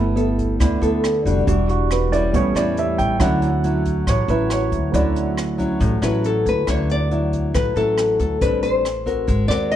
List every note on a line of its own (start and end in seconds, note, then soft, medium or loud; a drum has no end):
0.00 0.56 G1 medium
0.00 0.58 G3 medium
0.00 0.56 A3 soft
0.00 0.56 B3 soft
0.00 0.57 E4 soft
0.00 0.56 B4 medium
0.16 0.59 B3 medium
0.16 0.59 E4 medium
0.16 0.60 A4 medium
0.16 closed hi-hat soft
0.39 kick soft
0.39 closed hi-hat soft
0.60 0.80 D2 medium
0.60 1.44 D3 medium
0.60 0.79 A3 soft
0.60 0.80 B3 soft
0.60 0.80 E4 soft
0.60 kick medium
0.60 cross-stick medium
0.60 closed hi-hat medium
0.81 1.22 D2 medium
0.81 1.21 B3 medium
0.81 1.21 E4 medium
0.81 1.22 A4 medium
0.81 closed hi-hat soft
1.04 cross-stick medium
1.04 closed hi-hat soft
1.25 1.45 F1 medium
1.25 2.09 G3 medium
1.25 2.09 D4 medium
1.25 2.09 F#4 medium
1.25 kick soft
1.25 closed hi-hat soft
1.47 2.30 E1 medium
1.47 2.31 E3 medium
1.47 2.09 G3 soft
1.47 2.09 D4 soft
1.47 1.68 F#4 soft
1.47 kick medium
1.47 closed hi-hat medium
1.69 1.90 F#4 medium
1.69 closed hi-hat soft
1.91 2.12 B4 medium
1.91 cross-stick medium
1.91 closed hi-hat soft
2.12 2.52 G3 medium
2.12 2.52 C#4 medium
2.12 2.52 E4 medium
2.12 2.33 D5 medium
2.12 kick soft
2.12 closed hi-hat soft
2.32 2.54 A1 medium
2.32 3.19 A2 medium
2.32 3.16 G3 soft
2.32 3.16 B3 soft
2.32 3.17 C#4 soft
2.32 2.56 C#5 medium
2.32 kick medium
2.32 closed hi-hat medium
2.55 2.95 E2 medium
2.55 3.17 G3 medium
2.55 3.17 C#4 medium
2.55 3.17 E4 medium
2.55 2.77 D5 medium
2.55 cross-stick medium
2.55 closed hi-hat soft
2.77 2.99 E5 medium
2.77 closed hi-hat soft
2.98 3.19 A1 medium
2.98 3.19 G5 medium
2.98 kick soft
2.98 closed hi-hat soft
3.19 4.03 D2 medium
3.19 4.05 D3 medium
3.19 3.48 F#3 soft
3.19 3.48 F#3 medium
3.19 3.49 C#4 soft
3.19 3.48 C#4 medium
3.19 3.49 E4 medium
3.19 3.82 F#5 medium
3.19 kick medium
3.19 cross-stick medium
3.19 closed hi-hat medium
3.42 closed hi-hat soft
3.64 4.25 F#3 medium
3.64 4.26 C#4 medium
3.64 4.26 E4 medium
3.64 closed hi-hat soft
3.85 kick soft
3.85 closed hi-hat soft
4.07 4.27 A1 medium
4.07 4.92 A2 medium
4.07 4.29 C#5 medium
4.07 kick medium
4.07 cross-stick medium
4.07 closed hi-hat medium
4.28 4.69 A1 medium
4.28 4.91 F#3 medium
4.28 4.91 C#4 medium
4.28 4.91 E4 medium
4.28 4.50 B4 medium
4.28 closed hi-hat soft
4.50 4.91 C#5 medium
4.50 cross-stick medium
4.50 closed hi-hat soft
4.72 4.92 D2 medium
4.72 kick soft
4.72 closed hi-hat soft
4.92 5.77 D2 medium
4.92 5.79 D3 medium
4.92 5.22 F#3 soft
4.92 5.37 F#3 medium
4.92 5.37 C#4 medium
4.92 5.23 E4 soft
4.92 5.37 E4 medium
4.92 5.22 C#5 soft
4.92 5.56 D5 medium
4.92 kick medium
4.92 closed hi-hat medium
5.16 closed hi-hat soft
5.37 cross-stick medium
5.37 closed hi-hat soft
5.58 5.99 F#3 medium
5.58 5.99 C#4 medium
5.58 5.99 E4 medium
5.58 kick soft
5.58 closed hi-hat soft
5.80 6.01 A1 loud
5.80 6.65 A2 medium
5.80 kick medium
5.80 closed hi-hat medium
6.02 6.42 A1 medium
6.02 6.64 F#3 medium
6.02 6.64 C#4 medium
6.02 6.64 E4 medium
6.02 6.26 B4 medium
6.02 cross-stick medium
6.02 closed hi-hat soft
6.24 6.47 A4 medium
6.24 closed hi-hat soft
6.46 6.66 D2 medium
6.46 6.69 B4 medium
6.46 kick soft
6.46 closed hi-hat soft
6.67 7.50 D2 medium
6.67 7.52 D3 medium
6.67 7.07 F#3 soft
6.67 7.07 C#4 soft
6.67 7.08 E4 medium
6.67 6.91 C#5 medium
6.67 kick medium
6.67 cross-stick medium
6.67 closed hi-hat soft
6.89 7.54 D5 medium
6.89 closed hi-hat soft
7.11 7.73 F#3 medium
7.11 7.73 E4 medium
7.11 closed hi-hat soft
7.33 kick soft
7.33 closed hi-hat soft
7.54 7.74 A1 medium
7.54 8.39 A2 medium
7.54 7.77 B4 medium
7.54 kick medium
7.54 cross-stick medium
7.54 closed hi-hat medium
7.76 8.16 A1 medium
7.76 8.38 F#3 medium
7.76 8.38 C#4 medium
7.76 8.38 E4 medium
7.76 8.18 A4 medium
7.76 closed hi-hat soft
7.98 cross-stick medium
7.98 closed hi-hat soft
8.20 8.40 D2 medium
8.20 8.40 A4 medium
8.20 kick soft
8.20 closed hi-hat soft
8.41 9.24 A1 medium
8.41 9.26 A2 medium
8.41 8.85 G3 soft
8.41 8.85 C4 medium
8.41 8.85 D4 medium
8.41 8.62 B4 medium
8.41 kick medium
8.41 closed hi-hat medium
8.63 9.46 C5 medium
8.63 closed hi-hat soft
8.85 cross-stick medium
8.85 closed hi-hat soft
9.06 9.46 C4 medium
9.06 9.46 F#4 medium
9.06 9.46 A#4 medium
9.06 kick soft
9.06 closed hi-hat soft
9.27 9.48 G#1 medium
9.27 9.76 G#3 medium
9.27 kick medium
9.27 closed hi-hat medium
9.48 9.76 D#2 medium
9.48 9.76 C4 medium
9.48 9.76 F#4 medium
9.48 9.76 A#4 medium
9.48 9.71 D5 medium
9.48 cross-stick medium
9.48 closed hi-hat soft
9.71 9.76 D#5 medium
9.71 closed hi-hat soft